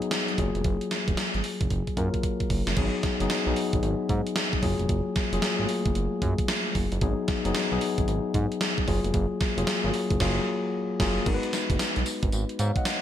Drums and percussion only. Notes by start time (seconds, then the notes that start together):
0.02 closed hi-hat
0.11 snare, closed hi-hat
0.28 closed hi-hat
0.38 kick, closed hi-hat
0.55 closed hi-hat
0.64 kick, closed hi-hat
0.81 closed hi-hat
0.91 snare, closed hi-hat
1.08 kick, closed hi-hat
1.17 snare, closed hi-hat
1.34 closed hi-hat
1.44 open hi-hat
1.61 kick, closed hi-hat
1.71 kick, closed hi-hat
1.87 kick, closed hi-hat
1.97 kick, closed hi-hat
2.14 kick, closed hi-hat
2.23 kick, closed hi-hat
2.40 kick, closed hi-hat
2.50 kick, open hi-hat
2.67 snare, closed hi-hat
2.77 kick, closed hi-hat, crash
3.03 kick, snare, closed hi-hat
3.20 closed hi-hat
3.30 snare, closed hi-hat
3.56 open hi-hat
3.73 kick, closed hi-hat
3.83 closed hi-hat
4.09 kick, closed hi-hat
4.27 closed hi-hat
4.36 snare, closed hi-hat
4.53 kick
4.63 kick, open hi-hat
4.79 closed hi-hat
4.89 kick, closed hi-hat
5.16 kick, snare, closed hi-hat
5.33 closed hi-hat
5.42 snare, closed hi-hat
5.69 open hi-hat
5.85 kick, closed hi-hat
5.95 closed hi-hat
6.22 kick, closed hi-hat
6.38 kick, closed hi-hat
6.48 snare, closed hi-hat
6.75 kick, open hi-hat
6.92 closed hi-hat
7.01 kick, closed hi-hat
7.28 kick, snare, closed hi-hat
7.45 closed hi-hat
7.55 snare, closed hi-hat
7.81 open hi-hat
7.98 kick, closed hi-hat
8.08 closed hi-hat
8.34 kick, closed hi-hat
8.52 closed hi-hat
8.61 snare, closed hi-hat
8.78 kick
8.88 kick, open hi-hat
9.04 closed hi-hat
9.14 kick, closed hi-hat
9.41 kick, snare, closed hi-hat
9.58 closed hi-hat
9.67 snare, closed hi-hat
9.94 open hi-hat
10.11 kick, closed hi-hat
10.20 kick, snare, crash
11.00 kick, snare, crash
11.26 kick, closed hi-hat, crash
11.43 closed hi-hat
11.53 snare, closed hi-hat, tambourine
11.70 kick, closed hi-hat
11.79 snare, closed hi-hat, tambourine
11.96 closed hi-hat
12.06 open hi-hat, tambourine
12.23 kick, closed hi-hat
12.32 closed hi-hat, tambourine
12.49 closed hi-hat
12.59 closed hi-hat, tambourine
12.76 kick, closed hi-hat
12.85 snare, closed hi-hat, tambourine